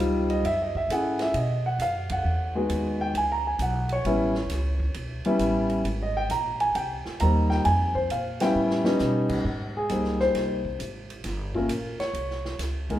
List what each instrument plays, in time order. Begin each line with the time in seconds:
Already playing: grand piano G3 C4 D#4 F4
0.00 upright bass C#2, hi-hat pedal, ride
0.30 grand piano D#5, ride
0.44 upright bass F#2, grand piano E5, ride
0.62 grand piano D#5
0.75 grand piano E5, kick
0.89 upright bass G#2, grand piano C#4 E4 G#4 A4 F#5, hi-hat pedal, ride
1.19 grand piano E5, snare, ride
1.34 upright bass B2, grand piano D#5, ride
1.66 grand piano F#5
1.78 upright bass F#2, grand piano F5, hi-hat pedal, ride
2.09 grand piano F#5, kick, ride
2.24 upright bass E2
2.55 grand piano G#3 B3 D#4 F#4
2.70 upright bass D#2, hi-hat pedal, ride
3.01 grand piano G5
3.14 upright bass C#2, grand piano G#5, ride
3.32 grand piano A#5
3.47 grand piano G#5
3.59 upright bass B1, grand piano F#5, hi-hat pedal, ride
3.89 grand piano C#5, ride
4.05 upright bass A1, grand piano G3 B3 C#4 E4, ride
4.35 snare
4.49 upright bass C#2, snare, hi-hat pedal, ride
4.80 kick
4.94 upright bass B1, ride
5.24 grand piano G3 B3 C#4 E4, muted upright bass stroke, ride
5.39 upright bass A1, hi-hat pedal, ride
5.70 ride
5.84 upright bass G#1, ride
6.03 grand piano D#5
6.17 grand piano G5
6.30 upright bass A#1, grand piano A#5, hi-hat pedal, ride
6.60 grand piano G#5, ride
6.75 upright bass C2, grand piano G5, ride
7.05 muted upright bass stroke, snare
7.20 upright bass D#2, grand piano G3 A#3 C4 D#4 A#5, hi-hat pedal, ride
7.50 grand piano G5, snare
7.65 upright bass F2, grand piano G#5, ride
7.95 grand piano C5, kick
8.10 upright bass A#2, grand piano F5, hi-hat pedal, ride
8.40 grand piano G3 B3 C#4 E4 G5, snare, ride
8.55 upright bass A2
8.70 snare
8.84 grand piano G3 B3 C#4 D#4, snare
8.99 upright bass B2, snare, hi-hat pedal
9.29 kick, crash
9.44 upright bass G#2
9.77 grand piano G#4
9.89 upright bass C#2, grand piano G3 A#3 C4 D#4, hi-hat pedal, ride
10.04 snare
10.20 grand piano C5, snare
10.34 upright bass C2, snare, ride
10.65 kick
10.79 upright bass G#1, hi-hat pedal, ride
11.10 ride
11.24 upright bass G1, snare, ride
11.55 grand piano A3 A#3 C#4 F4 A#4, kick
11.69 upright bass A#1, hi-hat pedal, ride
11.99 grand piano C#5, muted upright bass stroke, snare, ride
12.13 upright bass C2, ride
12.31 snare
12.45 snare
12.58 upright bass C#2, snare, hi-hat pedal, ride
12.90 grand piano G#3 A#3 D#4 A#4, kick, ride